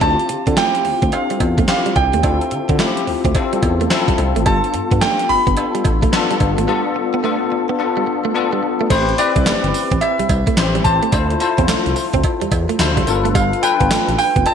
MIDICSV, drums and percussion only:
0, 0, Header, 1, 2, 480
1, 0, Start_track
1, 0, Tempo, 555556
1, 12, Time_signature, 4, 2, 24, 8
1, 12563, End_track
2, 0, Start_track
2, 0, Title_t, "Drums"
2, 10, Note_on_c, 9, 42, 70
2, 12, Note_on_c, 9, 36, 106
2, 16, Note_on_c, 9, 56, 72
2, 96, Note_off_c, 9, 42, 0
2, 98, Note_off_c, 9, 36, 0
2, 103, Note_off_c, 9, 56, 0
2, 168, Note_on_c, 9, 42, 46
2, 251, Note_off_c, 9, 42, 0
2, 251, Note_on_c, 9, 42, 81
2, 337, Note_off_c, 9, 42, 0
2, 404, Note_on_c, 9, 42, 55
2, 405, Note_on_c, 9, 36, 82
2, 490, Note_off_c, 9, 42, 0
2, 490, Note_on_c, 9, 38, 105
2, 490, Note_on_c, 9, 42, 71
2, 491, Note_off_c, 9, 36, 0
2, 493, Note_on_c, 9, 56, 62
2, 500, Note_on_c, 9, 39, 79
2, 576, Note_off_c, 9, 38, 0
2, 576, Note_off_c, 9, 42, 0
2, 579, Note_off_c, 9, 56, 0
2, 587, Note_off_c, 9, 39, 0
2, 646, Note_on_c, 9, 42, 60
2, 732, Note_off_c, 9, 42, 0
2, 732, Note_on_c, 9, 46, 60
2, 818, Note_off_c, 9, 46, 0
2, 883, Note_on_c, 9, 36, 90
2, 883, Note_on_c, 9, 42, 48
2, 969, Note_off_c, 9, 42, 0
2, 969, Note_on_c, 9, 42, 72
2, 970, Note_off_c, 9, 36, 0
2, 975, Note_on_c, 9, 56, 77
2, 1055, Note_off_c, 9, 42, 0
2, 1061, Note_off_c, 9, 56, 0
2, 1124, Note_on_c, 9, 42, 56
2, 1211, Note_off_c, 9, 42, 0
2, 1212, Note_on_c, 9, 36, 85
2, 1212, Note_on_c, 9, 42, 64
2, 1213, Note_on_c, 9, 56, 77
2, 1299, Note_off_c, 9, 36, 0
2, 1299, Note_off_c, 9, 42, 0
2, 1300, Note_off_c, 9, 56, 0
2, 1364, Note_on_c, 9, 36, 102
2, 1366, Note_on_c, 9, 42, 48
2, 1449, Note_off_c, 9, 42, 0
2, 1449, Note_on_c, 9, 42, 70
2, 1450, Note_off_c, 9, 36, 0
2, 1450, Note_on_c, 9, 38, 102
2, 1454, Note_on_c, 9, 56, 58
2, 1461, Note_on_c, 9, 39, 87
2, 1536, Note_off_c, 9, 42, 0
2, 1537, Note_off_c, 9, 38, 0
2, 1540, Note_off_c, 9, 56, 0
2, 1547, Note_off_c, 9, 39, 0
2, 1606, Note_on_c, 9, 42, 54
2, 1691, Note_off_c, 9, 42, 0
2, 1691, Note_on_c, 9, 42, 64
2, 1692, Note_on_c, 9, 56, 54
2, 1693, Note_on_c, 9, 36, 95
2, 1777, Note_off_c, 9, 42, 0
2, 1778, Note_off_c, 9, 56, 0
2, 1779, Note_off_c, 9, 36, 0
2, 1844, Note_on_c, 9, 42, 59
2, 1930, Note_off_c, 9, 42, 0
2, 1930, Note_on_c, 9, 42, 68
2, 1930, Note_on_c, 9, 56, 71
2, 1932, Note_on_c, 9, 36, 105
2, 2016, Note_off_c, 9, 42, 0
2, 2016, Note_off_c, 9, 56, 0
2, 2018, Note_off_c, 9, 36, 0
2, 2085, Note_on_c, 9, 42, 45
2, 2170, Note_off_c, 9, 42, 0
2, 2170, Note_on_c, 9, 42, 80
2, 2257, Note_off_c, 9, 42, 0
2, 2323, Note_on_c, 9, 42, 53
2, 2325, Note_on_c, 9, 36, 93
2, 2409, Note_off_c, 9, 42, 0
2, 2410, Note_on_c, 9, 38, 108
2, 2410, Note_on_c, 9, 42, 65
2, 2411, Note_on_c, 9, 56, 59
2, 2412, Note_off_c, 9, 36, 0
2, 2420, Note_on_c, 9, 39, 85
2, 2496, Note_off_c, 9, 38, 0
2, 2496, Note_off_c, 9, 42, 0
2, 2497, Note_off_c, 9, 56, 0
2, 2507, Note_off_c, 9, 39, 0
2, 2567, Note_on_c, 9, 42, 61
2, 2653, Note_off_c, 9, 42, 0
2, 2656, Note_on_c, 9, 46, 61
2, 2742, Note_off_c, 9, 46, 0
2, 2805, Note_on_c, 9, 36, 99
2, 2806, Note_on_c, 9, 42, 54
2, 2891, Note_off_c, 9, 42, 0
2, 2891, Note_on_c, 9, 42, 78
2, 2892, Note_off_c, 9, 36, 0
2, 2892, Note_on_c, 9, 36, 99
2, 2895, Note_on_c, 9, 56, 74
2, 2978, Note_off_c, 9, 42, 0
2, 2979, Note_off_c, 9, 36, 0
2, 2981, Note_off_c, 9, 56, 0
2, 3048, Note_on_c, 9, 42, 57
2, 3132, Note_on_c, 9, 56, 80
2, 3133, Note_on_c, 9, 36, 96
2, 3134, Note_off_c, 9, 42, 0
2, 3134, Note_on_c, 9, 42, 64
2, 3219, Note_off_c, 9, 56, 0
2, 3220, Note_off_c, 9, 36, 0
2, 3220, Note_off_c, 9, 42, 0
2, 3290, Note_on_c, 9, 42, 50
2, 3373, Note_off_c, 9, 42, 0
2, 3373, Note_on_c, 9, 42, 67
2, 3374, Note_on_c, 9, 38, 119
2, 3374, Note_on_c, 9, 56, 64
2, 3384, Note_on_c, 9, 39, 84
2, 3459, Note_off_c, 9, 42, 0
2, 3460, Note_off_c, 9, 38, 0
2, 3460, Note_off_c, 9, 56, 0
2, 3470, Note_off_c, 9, 39, 0
2, 3525, Note_on_c, 9, 36, 102
2, 3529, Note_on_c, 9, 42, 52
2, 3611, Note_off_c, 9, 36, 0
2, 3612, Note_on_c, 9, 56, 54
2, 3613, Note_off_c, 9, 42, 0
2, 3613, Note_on_c, 9, 42, 64
2, 3699, Note_off_c, 9, 42, 0
2, 3699, Note_off_c, 9, 56, 0
2, 3768, Note_on_c, 9, 42, 61
2, 3852, Note_on_c, 9, 56, 76
2, 3853, Note_off_c, 9, 42, 0
2, 3853, Note_on_c, 9, 36, 108
2, 3853, Note_on_c, 9, 42, 76
2, 3938, Note_off_c, 9, 56, 0
2, 3940, Note_off_c, 9, 36, 0
2, 3940, Note_off_c, 9, 42, 0
2, 4009, Note_on_c, 9, 42, 45
2, 4093, Note_off_c, 9, 42, 0
2, 4093, Note_on_c, 9, 42, 74
2, 4179, Note_off_c, 9, 42, 0
2, 4245, Note_on_c, 9, 42, 53
2, 4246, Note_on_c, 9, 36, 86
2, 4331, Note_on_c, 9, 56, 61
2, 4332, Note_off_c, 9, 36, 0
2, 4332, Note_off_c, 9, 42, 0
2, 4333, Note_on_c, 9, 38, 107
2, 4333, Note_on_c, 9, 42, 70
2, 4343, Note_on_c, 9, 39, 84
2, 4418, Note_off_c, 9, 56, 0
2, 4419, Note_off_c, 9, 38, 0
2, 4419, Note_off_c, 9, 42, 0
2, 4430, Note_off_c, 9, 39, 0
2, 4488, Note_on_c, 9, 42, 60
2, 4574, Note_off_c, 9, 42, 0
2, 4574, Note_on_c, 9, 46, 65
2, 4660, Note_off_c, 9, 46, 0
2, 4725, Note_on_c, 9, 36, 92
2, 4726, Note_on_c, 9, 42, 53
2, 4809, Note_off_c, 9, 42, 0
2, 4809, Note_on_c, 9, 42, 76
2, 4811, Note_off_c, 9, 36, 0
2, 4815, Note_on_c, 9, 56, 77
2, 4895, Note_off_c, 9, 42, 0
2, 4901, Note_off_c, 9, 56, 0
2, 4966, Note_on_c, 9, 42, 63
2, 5050, Note_on_c, 9, 56, 81
2, 5053, Note_off_c, 9, 42, 0
2, 5053, Note_on_c, 9, 36, 95
2, 5056, Note_on_c, 9, 42, 66
2, 5136, Note_off_c, 9, 56, 0
2, 5140, Note_off_c, 9, 36, 0
2, 5142, Note_off_c, 9, 42, 0
2, 5205, Note_on_c, 9, 36, 99
2, 5210, Note_on_c, 9, 42, 52
2, 5292, Note_off_c, 9, 36, 0
2, 5294, Note_off_c, 9, 42, 0
2, 5294, Note_on_c, 9, 42, 64
2, 5294, Note_on_c, 9, 56, 64
2, 5295, Note_on_c, 9, 38, 108
2, 5306, Note_on_c, 9, 39, 91
2, 5381, Note_off_c, 9, 42, 0
2, 5381, Note_off_c, 9, 56, 0
2, 5382, Note_off_c, 9, 38, 0
2, 5392, Note_off_c, 9, 39, 0
2, 5449, Note_on_c, 9, 42, 55
2, 5531, Note_off_c, 9, 42, 0
2, 5531, Note_on_c, 9, 42, 63
2, 5533, Note_on_c, 9, 56, 56
2, 5534, Note_on_c, 9, 36, 93
2, 5618, Note_off_c, 9, 42, 0
2, 5620, Note_off_c, 9, 36, 0
2, 5620, Note_off_c, 9, 56, 0
2, 5686, Note_on_c, 9, 42, 61
2, 5773, Note_off_c, 9, 42, 0
2, 7692, Note_on_c, 9, 42, 74
2, 7693, Note_on_c, 9, 36, 119
2, 7693, Note_on_c, 9, 49, 100
2, 7693, Note_on_c, 9, 54, 74
2, 7694, Note_on_c, 9, 56, 78
2, 7779, Note_off_c, 9, 42, 0
2, 7779, Note_off_c, 9, 49, 0
2, 7779, Note_off_c, 9, 54, 0
2, 7780, Note_off_c, 9, 36, 0
2, 7780, Note_off_c, 9, 56, 0
2, 7851, Note_on_c, 9, 42, 48
2, 7934, Note_off_c, 9, 42, 0
2, 7934, Note_on_c, 9, 42, 78
2, 7936, Note_on_c, 9, 54, 76
2, 8020, Note_off_c, 9, 42, 0
2, 8022, Note_off_c, 9, 54, 0
2, 8086, Note_on_c, 9, 42, 54
2, 8087, Note_on_c, 9, 36, 96
2, 8172, Note_off_c, 9, 42, 0
2, 8173, Note_off_c, 9, 36, 0
2, 8173, Note_on_c, 9, 42, 67
2, 8174, Note_on_c, 9, 38, 106
2, 8174, Note_on_c, 9, 54, 92
2, 8175, Note_on_c, 9, 56, 57
2, 8184, Note_on_c, 9, 39, 88
2, 8260, Note_off_c, 9, 38, 0
2, 8260, Note_off_c, 9, 42, 0
2, 8261, Note_off_c, 9, 54, 0
2, 8262, Note_off_c, 9, 56, 0
2, 8270, Note_off_c, 9, 39, 0
2, 8329, Note_on_c, 9, 42, 58
2, 8415, Note_off_c, 9, 42, 0
2, 8417, Note_on_c, 9, 46, 71
2, 8419, Note_on_c, 9, 54, 77
2, 8504, Note_off_c, 9, 46, 0
2, 8505, Note_off_c, 9, 54, 0
2, 8566, Note_on_c, 9, 36, 100
2, 8567, Note_on_c, 9, 42, 56
2, 8651, Note_off_c, 9, 42, 0
2, 8651, Note_on_c, 9, 42, 75
2, 8653, Note_off_c, 9, 36, 0
2, 8659, Note_on_c, 9, 56, 76
2, 8738, Note_off_c, 9, 42, 0
2, 8746, Note_off_c, 9, 56, 0
2, 8808, Note_on_c, 9, 42, 59
2, 8892, Note_on_c, 9, 54, 58
2, 8894, Note_off_c, 9, 42, 0
2, 8894, Note_on_c, 9, 36, 97
2, 8894, Note_on_c, 9, 42, 71
2, 8896, Note_on_c, 9, 56, 79
2, 8979, Note_off_c, 9, 54, 0
2, 8980, Note_off_c, 9, 36, 0
2, 8980, Note_off_c, 9, 42, 0
2, 8982, Note_off_c, 9, 56, 0
2, 9045, Note_on_c, 9, 36, 98
2, 9048, Note_on_c, 9, 42, 52
2, 9132, Note_off_c, 9, 36, 0
2, 9132, Note_off_c, 9, 42, 0
2, 9132, Note_on_c, 9, 42, 68
2, 9133, Note_on_c, 9, 38, 112
2, 9134, Note_on_c, 9, 54, 109
2, 9137, Note_on_c, 9, 56, 60
2, 9143, Note_on_c, 9, 39, 96
2, 9218, Note_off_c, 9, 42, 0
2, 9219, Note_off_c, 9, 38, 0
2, 9220, Note_off_c, 9, 54, 0
2, 9224, Note_off_c, 9, 56, 0
2, 9230, Note_off_c, 9, 39, 0
2, 9289, Note_on_c, 9, 42, 58
2, 9371, Note_off_c, 9, 42, 0
2, 9371, Note_on_c, 9, 42, 63
2, 9373, Note_on_c, 9, 54, 69
2, 9374, Note_on_c, 9, 36, 98
2, 9457, Note_off_c, 9, 42, 0
2, 9459, Note_off_c, 9, 54, 0
2, 9460, Note_off_c, 9, 36, 0
2, 9526, Note_on_c, 9, 42, 61
2, 9610, Note_off_c, 9, 42, 0
2, 9610, Note_on_c, 9, 42, 75
2, 9611, Note_on_c, 9, 54, 71
2, 9613, Note_on_c, 9, 36, 122
2, 9616, Note_on_c, 9, 56, 74
2, 9697, Note_off_c, 9, 42, 0
2, 9697, Note_off_c, 9, 54, 0
2, 9699, Note_off_c, 9, 36, 0
2, 9703, Note_off_c, 9, 56, 0
2, 9767, Note_on_c, 9, 42, 48
2, 9852, Note_off_c, 9, 42, 0
2, 9852, Note_on_c, 9, 42, 82
2, 9854, Note_on_c, 9, 54, 80
2, 9938, Note_off_c, 9, 42, 0
2, 9940, Note_off_c, 9, 54, 0
2, 10006, Note_on_c, 9, 42, 61
2, 10007, Note_on_c, 9, 36, 91
2, 10092, Note_off_c, 9, 42, 0
2, 10093, Note_off_c, 9, 36, 0
2, 10093, Note_on_c, 9, 38, 116
2, 10093, Note_on_c, 9, 42, 71
2, 10094, Note_on_c, 9, 54, 97
2, 10099, Note_on_c, 9, 56, 58
2, 10103, Note_on_c, 9, 39, 88
2, 10179, Note_off_c, 9, 38, 0
2, 10179, Note_off_c, 9, 42, 0
2, 10180, Note_off_c, 9, 54, 0
2, 10185, Note_off_c, 9, 56, 0
2, 10190, Note_off_c, 9, 39, 0
2, 10248, Note_on_c, 9, 42, 60
2, 10334, Note_off_c, 9, 42, 0
2, 10334, Note_on_c, 9, 46, 71
2, 10335, Note_on_c, 9, 54, 69
2, 10420, Note_off_c, 9, 46, 0
2, 10421, Note_off_c, 9, 54, 0
2, 10484, Note_on_c, 9, 42, 54
2, 10486, Note_on_c, 9, 36, 97
2, 10571, Note_off_c, 9, 42, 0
2, 10571, Note_on_c, 9, 42, 79
2, 10572, Note_off_c, 9, 36, 0
2, 10573, Note_on_c, 9, 36, 105
2, 10579, Note_on_c, 9, 56, 71
2, 10657, Note_off_c, 9, 42, 0
2, 10659, Note_off_c, 9, 36, 0
2, 10666, Note_off_c, 9, 56, 0
2, 10726, Note_on_c, 9, 42, 61
2, 10812, Note_off_c, 9, 42, 0
2, 10812, Note_on_c, 9, 54, 62
2, 10814, Note_on_c, 9, 36, 95
2, 10814, Note_on_c, 9, 42, 65
2, 10817, Note_on_c, 9, 56, 84
2, 10899, Note_off_c, 9, 54, 0
2, 10900, Note_off_c, 9, 36, 0
2, 10900, Note_off_c, 9, 42, 0
2, 10903, Note_off_c, 9, 56, 0
2, 10968, Note_on_c, 9, 42, 54
2, 11050, Note_off_c, 9, 42, 0
2, 11050, Note_on_c, 9, 42, 71
2, 11051, Note_on_c, 9, 38, 110
2, 11052, Note_on_c, 9, 54, 103
2, 11056, Note_on_c, 9, 56, 64
2, 11062, Note_on_c, 9, 39, 92
2, 11137, Note_off_c, 9, 42, 0
2, 11138, Note_off_c, 9, 38, 0
2, 11139, Note_off_c, 9, 54, 0
2, 11143, Note_off_c, 9, 56, 0
2, 11148, Note_off_c, 9, 39, 0
2, 11206, Note_on_c, 9, 36, 92
2, 11209, Note_on_c, 9, 42, 58
2, 11292, Note_off_c, 9, 36, 0
2, 11293, Note_off_c, 9, 42, 0
2, 11293, Note_on_c, 9, 42, 66
2, 11295, Note_on_c, 9, 54, 69
2, 11380, Note_off_c, 9, 42, 0
2, 11382, Note_off_c, 9, 54, 0
2, 11451, Note_on_c, 9, 42, 61
2, 11535, Note_on_c, 9, 36, 118
2, 11535, Note_on_c, 9, 56, 75
2, 11536, Note_off_c, 9, 42, 0
2, 11536, Note_on_c, 9, 42, 76
2, 11537, Note_on_c, 9, 54, 72
2, 11621, Note_off_c, 9, 56, 0
2, 11622, Note_off_c, 9, 36, 0
2, 11623, Note_off_c, 9, 42, 0
2, 11623, Note_off_c, 9, 54, 0
2, 11693, Note_on_c, 9, 42, 46
2, 11775, Note_off_c, 9, 42, 0
2, 11775, Note_on_c, 9, 42, 88
2, 11777, Note_on_c, 9, 54, 81
2, 11862, Note_off_c, 9, 42, 0
2, 11864, Note_off_c, 9, 54, 0
2, 11927, Note_on_c, 9, 42, 59
2, 11928, Note_on_c, 9, 36, 91
2, 12014, Note_off_c, 9, 42, 0
2, 12015, Note_off_c, 9, 36, 0
2, 12015, Note_on_c, 9, 38, 101
2, 12015, Note_on_c, 9, 42, 66
2, 12016, Note_on_c, 9, 54, 100
2, 12016, Note_on_c, 9, 56, 63
2, 12026, Note_on_c, 9, 39, 91
2, 12102, Note_off_c, 9, 38, 0
2, 12102, Note_off_c, 9, 42, 0
2, 12102, Note_off_c, 9, 54, 0
2, 12103, Note_off_c, 9, 56, 0
2, 12112, Note_off_c, 9, 39, 0
2, 12170, Note_on_c, 9, 42, 61
2, 12256, Note_off_c, 9, 42, 0
2, 12256, Note_on_c, 9, 46, 66
2, 12257, Note_on_c, 9, 54, 75
2, 12342, Note_off_c, 9, 46, 0
2, 12344, Note_off_c, 9, 54, 0
2, 12407, Note_on_c, 9, 36, 97
2, 12409, Note_on_c, 9, 42, 56
2, 12491, Note_off_c, 9, 42, 0
2, 12491, Note_on_c, 9, 42, 78
2, 12493, Note_off_c, 9, 36, 0
2, 12497, Note_on_c, 9, 56, 82
2, 12563, Note_off_c, 9, 42, 0
2, 12563, Note_off_c, 9, 56, 0
2, 12563, End_track
0, 0, End_of_file